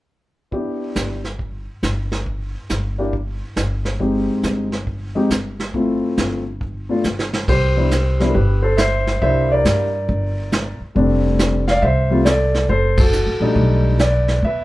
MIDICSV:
0, 0, Header, 1, 5, 480
1, 0, Start_track
1, 0, Key_signature, 0, "major"
1, 0, Tempo, 434468
1, 577, Time_signature, 4, 2, 24, 8
1, 16178, End_track
2, 0, Start_track
2, 0, Title_t, "Grand piano"
2, 0, Program_c, 0, 0
2, 569, Note_on_c, 0, 59, 40
2, 581, Note_on_c, 0, 62, 35
2, 584, Note_on_c, 0, 64, 37
2, 588, Note_on_c, 0, 67, 46
2, 1308, Note_off_c, 0, 59, 0
2, 1314, Note_off_c, 0, 62, 0
2, 1315, Note_off_c, 0, 64, 0
2, 1317, Note_off_c, 0, 67, 0
2, 3293, Note_on_c, 0, 58, 46
2, 3297, Note_on_c, 0, 62, 45
2, 3301, Note_on_c, 0, 64, 43
2, 3304, Note_on_c, 0, 67, 52
2, 3442, Note_off_c, 0, 58, 0
2, 3445, Note_off_c, 0, 62, 0
2, 3447, Note_off_c, 0, 64, 0
2, 3448, Note_off_c, 0, 67, 0
2, 4417, Note_on_c, 0, 56, 42
2, 4424, Note_on_c, 0, 63, 37
2, 4425, Note_on_c, 0, 60, 35
2, 4433, Note_on_c, 0, 67, 44
2, 5153, Note_off_c, 0, 56, 0
2, 5157, Note_off_c, 0, 60, 0
2, 5157, Note_off_c, 0, 63, 0
2, 5161, Note_off_c, 0, 67, 0
2, 5692, Note_on_c, 0, 56, 50
2, 5698, Note_on_c, 0, 60, 46
2, 5702, Note_on_c, 0, 63, 46
2, 5709, Note_on_c, 0, 67, 58
2, 5843, Note_off_c, 0, 56, 0
2, 5846, Note_off_c, 0, 60, 0
2, 5848, Note_off_c, 0, 63, 0
2, 5851, Note_off_c, 0, 67, 0
2, 6344, Note_on_c, 0, 57, 46
2, 6355, Note_on_c, 0, 60, 39
2, 6360, Note_on_c, 0, 64, 40
2, 6361, Note_on_c, 0, 65, 47
2, 7077, Note_off_c, 0, 57, 0
2, 7083, Note_off_c, 0, 60, 0
2, 7085, Note_off_c, 0, 64, 0
2, 7085, Note_off_c, 0, 65, 0
2, 7614, Note_on_c, 0, 57, 48
2, 7618, Note_on_c, 0, 59, 40
2, 7625, Note_on_c, 0, 62, 44
2, 7630, Note_on_c, 0, 65, 58
2, 7764, Note_off_c, 0, 57, 0
2, 7766, Note_off_c, 0, 59, 0
2, 7769, Note_off_c, 0, 62, 0
2, 7772, Note_off_c, 0, 65, 0
2, 8275, Note_on_c, 0, 72, 81
2, 8278, Note_on_c, 0, 67, 56
2, 8577, Note_on_c, 0, 55, 45
2, 8580, Note_on_c, 0, 59, 39
2, 8584, Note_on_c, 0, 62, 44
2, 8591, Note_on_c, 0, 64, 48
2, 8725, Note_off_c, 0, 55, 0
2, 8726, Note_off_c, 0, 59, 0
2, 8729, Note_off_c, 0, 62, 0
2, 8732, Note_off_c, 0, 64, 0
2, 9057, Note_on_c, 0, 55, 62
2, 9062, Note_on_c, 0, 59, 54
2, 9069, Note_on_c, 0, 62, 51
2, 9075, Note_on_c, 0, 64, 57
2, 9145, Note_off_c, 0, 67, 0
2, 9169, Note_on_c, 0, 70, 54
2, 9205, Note_off_c, 0, 55, 0
2, 9207, Note_off_c, 0, 59, 0
2, 9211, Note_off_c, 0, 62, 0
2, 9214, Note_off_c, 0, 64, 0
2, 9215, Note_off_c, 0, 72, 0
2, 9216, Note_off_c, 0, 70, 0
2, 9217, Note_on_c, 0, 71, 70
2, 9225, Note_on_c, 0, 67, 54
2, 9518, Note_off_c, 0, 67, 0
2, 9528, Note_on_c, 0, 72, 64
2, 9545, Note_on_c, 0, 69, 63
2, 9546, Note_off_c, 0, 71, 0
2, 9692, Note_off_c, 0, 72, 0
2, 9692, Note_on_c, 0, 76, 85
2, 9694, Note_off_c, 0, 69, 0
2, 9709, Note_on_c, 0, 72, 73
2, 10143, Note_off_c, 0, 76, 0
2, 10152, Note_off_c, 0, 72, 0
2, 10181, Note_on_c, 0, 55, 47
2, 10182, Note_on_c, 0, 58, 43
2, 10183, Note_on_c, 0, 76, 92
2, 10189, Note_on_c, 0, 62, 45
2, 10194, Note_on_c, 0, 64, 46
2, 10201, Note_on_c, 0, 72, 70
2, 10486, Note_off_c, 0, 72, 0
2, 10508, Note_off_c, 0, 76, 0
2, 10512, Note_on_c, 0, 74, 77
2, 10532, Note_on_c, 0, 70, 56
2, 10914, Note_off_c, 0, 55, 0
2, 10915, Note_off_c, 0, 58, 0
2, 10918, Note_off_c, 0, 62, 0
2, 10921, Note_off_c, 0, 64, 0
2, 11900, Note_off_c, 0, 74, 0
2, 11910, Note_off_c, 0, 70, 0
2, 12096, Note_on_c, 0, 55, 44
2, 12101, Note_on_c, 0, 57, 49
2, 12111, Note_on_c, 0, 60, 44
2, 12115, Note_on_c, 0, 62, 61
2, 12830, Note_off_c, 0, 55, 0
2, 12833, Note_off_c, 0, 57, 0
2, 12838, Note_off_c, 0, 60, 0
2, 12840, Note_off_c, 0, 62, 0
2, 12899, Note_on_c, 0, 77, 83
2, 12932, Note_on_c, 0, 74, 66
2, 13049, Note_off_c, 0, 77, 0
2, 13060, Note_on_c, 0, 76, 85
2, 13067, Note_off_c, 0, 74, 0
2, 13086, Note_on_c, 0, 72, 64
2, 13371, Note_on_c, 0, 55, 60
2, 13377, Note_on_c, 0, 57, 50
2, 13384, Note_on_c, 0, 60, 50
2, 13391, Note_on_c, 0, 65, 60
2, 13519, Note_off_c, 0, 72, 0
2, 13520, Note_off_c, 0, 55, 0
2, 13523, Note_off_c, 0, 57, 0
2, 13526, Note_off_c, 0, 60, 0
2, 13530, Note_off_c, 0, 65, 0
2, 13533, Note_on_c, 0, 74, 76
2, 13542, Note_on_c, 0, 69, 59
2, 13553, Note_off_c, 0, 76, 0
2, 13981, Note_off_c, 0, 74, 0
2, 13986, Note_off_c, 0, 69, 0
2, 14025, Note_on_c, 0, 72, 81
2, 14044, Note_on_c, 0, 69, 59
2, 14326, Note_off_c, 0, 69, 0
2, 14347, Note_off_c, 0, 72, 0
2, 14362, Note_on_c, 0, 69, 78
2, 14373, Note_on_c, 0, 66, 55
2, 14810, Note_on_c, 0, 55, 55
2, 14818, Note_on_c, 0, 57, 44
2, 14823, Note_on_c, 0, 62, 46
2, 14828, Note_on_c, 0, 63, 62
2, 14952, Note_off_c, 0, 66, 0
2, 15262, Note_off_c, 0, 69, 0
2, 15421, Note_off_c, 0, 55, 0
2, 15425, Note_off_c, 0, 57, 0
2, 15428, Note_off_c, 0, 62, 0
2, 15430, Note_off_c, 0, 63, 0
2, 15470, Note_on_c, 0, 74, 70
2, 15493, Note_on_c, 0, 71, 56
2, 15908, Note_off_c, 0, 74, 0
2, 15921, Note_off_c, 0, 71, 0
2, 15960, Note_on_c, 0, 76, 86
2, 15980, Note_on_c, 0, 71, 58
2, 16178, Note_off_c, 0, 71, 0
2, 16178, Note_off_c, 0, 76, 0
2, 16178, End_track
3, 0, Start_track
3, 0, Title_t, "Upright bass"
3, 0, Program_c, 1, 32
3, 1055, Note_on_c, 1, 31, 54
3, 1843, Note_off_c, 1, 31, 0
3, 2018, Note_on_c, 1, 31, 59
3, 2805, Note_off_c, 1, 31, 0
3, 2985, Note_on_c, 1, 31, 58
3, 3769, Note_off_c, 1, 31, 0
3, 3936, Note_on_c, 1, 31, 61
3, 4725, Note_off_c, 1, 31, 0
3, 4897, Note_on_c, 1, 31, 65
3, 5686, Note_off_c, 1, 31, 0
3, 5855, Note_on_c, 1, 31, 62
3, 6644, Note_off_c, 1, 31, 0
3, 6820, Note_on_c, 1, 31, 62
3, 7607, Note_off_c, 1, 31, 0
3, 7782, Note_on_c, 1, 31, 63
3, 8229, Note_off_c, 1, 31, 0
3, 8264, Note_on_c, 1, 36, 70
3, 9179, Note_off_c, 1, 36, 0
3, 9225, Note_on_c, 1, 31, 76
3, 10139, Note_off_c, 1, 31, 0
3, 10184, Note_on_c, 1, 36, 68
3, 10629, Note_off_c, 1, 36, 0
3, 10658, Note_on_c, 1, 43, 64
3, 11106, Note_off_c, 1, 43, 0
3, 11142, Note_on_c, 1, 31, 77
3, 11893, Note_off_c, 1, 31, 0
3, 12107, Note_on_c, 1, 29, 75
3, 13018, Note_off_c, 1, 29, 0
3, 13066, Note_on_c, 1, 36, 82
3, 13977, Note_off_c, 1, 36, 0
3, 14023, Note_on_c, 1, 30, 66
3, 14615, Note_off_c, 1, 30, 0
3, 14652, Note_on_c, 1, 33, 51
3, 14803, Note_off_c, 1, 33, 0
3, 14808, Note_on_c, 1, 34, 65
3, 14960, Note_off_c, 1, 34, 0
3, 14976, Note_on_c, 1, 35, 78
3, 15890, Note_off_c, 1, 35, 0
3, 15937, Note_on_c, 1, 40, 71
3, 16178, Note_off_c, 1, 40, 0
3, 16178, End_track
4, 0, Start_track
4, 0, Title_t, "Muted upright bass strokes"
4, 11936, Note_on_c, 9, 29, 30
4, 12047, Note_off_c, 9, 29, 0
4, 16178, End_track
5, 0, Start_track
5, 0, Title_t, "Drums"
5, 577, Note_on_c, 9, 36, 22
5, 581, Note_on_c, 9, 25, 37
5, 687, Note_off_c, 9, 36, 0
5, 1059, Note_on_c, 9, 44, 49
5, 1061, Note_on_c, 9, 38, 40
5, 1169, Note_off_c, 9, 44, 0
5, 1172, Note_off_c, 9, 38, 0
5, 1375, Note_on_c, 9, 38, 25
5, 1486, Note_off_c, 9, 38, 0
5, 1539, Note_on_c, 9, 36, 25
5, 1541, Note_off_c, 9, 25, 0
5, 1541, Note_on_c, 9, 25, 33
5, 1649, Note_off_c, 9, 36, 0
5, 2020, Note_on_c, 9, 44, 48
5, 2022, Note_on_c, 9, 38, 43
5, 2131, Note_off_c, 9, 44, 0
5, 2133, Note_off_c, 9, 38, 0
5, 2339, Note_on_c, 9, 38, 28
5, 2449, Note_off_c, 9, 38, 0
5, 2501, Note_on_c, 9, 36, 22
5, 2503, Note_off_c, 9, 25, 0
5, 2503, Note_on_c, 9, 25, 40
5, 2612, Note_off_c, 9, 36, 0
5, 2979, Note_on_c, 9, 44, 41
5, 2981, Note_on_c, 9, 38, 40
5, 3089, Note_off_c, 9, 44, 0
5, 3091, Note_off_c, 9, 38, 0
5, 3460, Note_on_c, 9, 36, 24
5, 3462, Note_off_c, 9, 25, 0
5, 3462, Note_on_c, 9, 25, 39
5, 3571, Note_off_c, 9, 36, 0
5, 3939, Note_on_c, 9, 44, 44
5, 3941, Note_on_c, 9, 38, 43
5, 4049, Note_off_c, 9, 44, 0
5, 4051, Note_off_c, 9, 38, 0
5, 4255, Note_on_c, 9, 38, 26
5, 4365, Note_off_c, 9, 38, 0
5, 4416, Note_off_c, 9, 25, 0
5, 4416, Note_on_c, 9, 25, 36
5, 4418, Note_on_c, 9, 36, 21
5, 4529, Note_off_c, 9, 36, 0
5, 4898, Note_on_c, 9, 44, 45
5, 4900, Note_on_c, 9, 38, 37
5, 5009, Note_off_c, 9, 44, 0
5, 5011, Note_off_c, 9, 38, 0
5, 5217, Note_on_c, 9, 38, 26
5, 5328, Note_off_c, 9, 38, 0
5, 5380, Note_off_c, 9, 25, 0
5, 5380, Note_on_c, 9, 25, 33
5, 5380, Note_on_c, 9, 36, 24
5, 5491, Note_off_c, 9, 36, 0
5, 5862, Note_on_c, 9, 44, 47
5, 5864, Note_on_c, 9, 38, 40
5, 5972, Note_off_c, 9, 44, 0
5, 5975, Note_off_c, 9, 38, 0
5, 6183, Note_on_c, 9, 38, 27
5, 6293, Note_off_c, 9, 38, 0
5, 6340, Note_off_c, 9, 25, 0
5, 6340, Note_on_c, 9, 25, 38
5, 6342, Note_on_c, 9, 36, 24
5, 6453, Note_off_c, 9, 36, 0
5, 6822, Note_on_c, 9, 44, 48
5, 6824, Note_on_c, 9, 38, 41
5, 6933, Note_off_c, 9, 44, 0
5, 6935, Note_off_c, 9, 38, 0
5, 7301, Note_off_c, 9, 25, 0
5, 7301, Note_on_c, 9, 25, 43
5, 7303, Note_on_c, 9, 36, 28
5, 7414, Note_off_c, 9, 36, 0
5, 7778, Note_on_c, 9, 44, 47
5, 7780, Note_on_c, 9, 38, 30
5, 7888, Note_off_c, 9, 44, 0
5, 7890, Note_off_c, 9, 38, 0
5, 7945, Note_on_c, 9, 38, 37
5, 8055, Note_off_c, 9, 38, 0
5, 8103, Note_on_c, 9, 38, 51
5, 8213, Note_off_c, 9, 38, 0
5, 8265, Note_on_c, 9, 36, 51
5, 8265, Note_on_c, 9, 51, 48
5, 8267, Note_off_c, 9, 25, 0
5, 8267, Note_on_c, 9, 25, 39
5, 8375, Note_off_c, 9, 51, 0
5, 8376, Note_off_c, 9, 36, 0
5, 8742, Note_on_c, 9, 44, 43
5, 8744, Note_on_c, 9, 38, 43
5, 8852, Note_off_c, 9, 44, 0
5, 8855, Note_off_c, 9, 38, 0
5, 9063, Note_on_c, 9, 38, 30
5, 9173, Note_off_c, 9, 38, 0
5, 9225, Note_on_c, 9, 36, 25
5, 9226, Note_off_c, 9, 25, 0
5, 9226, Note_on_c, 9, 25, 39
5, 9335, Note_off_c, 9, 36, 0
5, 9700, Note_on_c, 9, 44, 44
5, 9702, Note_on_c, 9, 38, 48
5, 9810, Note_off_c, 9, 44, 0
5, 9812, Note_off_c, 9, 38, 0
5, 10023, Note_on_c, 9, 38, 32
5, 10133, Note_off_c, 9, 38, 0
5, 10186, Note_on_c, 9, 36, 30
5, 10187, Note_off_c, 9, 25, 0
5, 10187, Note_on_c, 9, 25, 47
5, 10296, Note_off_c, 9, 36, 0
5, 10665, Note_on_c, 9, 44, 43
5, 10667, Note_on_c, 9, 38, 46
5, 10775, Note_off_c, 9, 44, 0
5, 10777, Note_off_c, 9, 38, 0
5, 11146, Note_on_c, 9, 36, 29
5, 11147, Note_off_c, 9, 25, 0
5, 11147, Note_on_c, 9, 25, 37
5, 11256, Note_off_c, 9, 36, 0
5, 11624, Note_on_c, 9, 44, 48
5, 11627, Note_on_c, 9, 38, 49
5, 11735, Note_off_c, 9, 44, 0
5, 11737, Note_off_c, 9, 38, 0
5, 12106, Note_off_c, 9, 25, 0
5, 12106, Note_on_c, 9, 25, 43
5, 12107, Note_on_c, 9, 36, 25
5, 12217, Note_off_c, 9, 36, 0
5, 12585, Note_on_c, 9, 44, 51
5, 12587, Note_on_c, 9, 38, 48
5, 12696, Note_off_c, 9, 44, 0
5, 12698, Note_off_c, 9, 38, 0
5, 12901, Note_on_c, 9, 38, 34
5, 13012, Note_off_c, 9, 38, 0
5, 13066, Note_on_c, 9, 36, 30
5, 13069, Note_off_c, 9, 25, 0
5, 13069, Note_on_c, 9, 25, 42
5, 13176, Note_off_c, 9, 36, 0
5, 13539, Note_on_c, 9, 44, 47
5, 13541, Note_on_c, 9, 38, 45
5, 13649, Note_off_c, 9, 44, 0
5, 13652, Note_off_c, 9, 38, 0
5, 13861, Note_on_c, 9, 38, 30
5, 13971, Note_off_c, 9, 38, 0
5, 14022, Note_on_c, 9, 36, 24
5, 14026, Note_off_c, 9, 25, 0
5, 14026, Note_on_c, 9, 25, 43
5, 14133, Note_off_c, 9, 36, 0
5, 14336, Note_on_c, 9, 51, 68
5, 14338, Note_on_c, 9, 36, 78
5, 14446, Note_off_c, 9, 51, 0
5, 14448, Note_off_c, 9, 36, 0
5, 14503, Note_on_c, 9, 44, 47
5, 14614, Note_off_c, 9, 44, 0
5, 14978, Note_on_c, 9, 36, 29
5, 14980, Note_off_c, 9, 25, 0
5, 14980, Note_on_c, 9, 25, 37
5, 15089, Note_off_c, 9, 36, 0
5, 15458, Note_on_c, 9, 44, 41
5, 15461, Note_on_c, 9, 38, 47
5, 15569, Note_off_c, 9, 44, 0
5, 15571, Note_off_c, 9, 38, 0
5, 15778, Note_on_c, 9, 38, 30
5, 15888, Note_off_c, 9, 38, 0
5, 15937, Note_on_c, 9, 36, 26
5, 15940, Note_off_c, 9, 25, 0
5, 15940, Note_on_c, 9, 25, 35
5, 16048, Note_off_c, 9, 36, 0
5, 16178, Note_off_c, 9, 25, 0
5, 16178, End_track
0, 0, End_of_file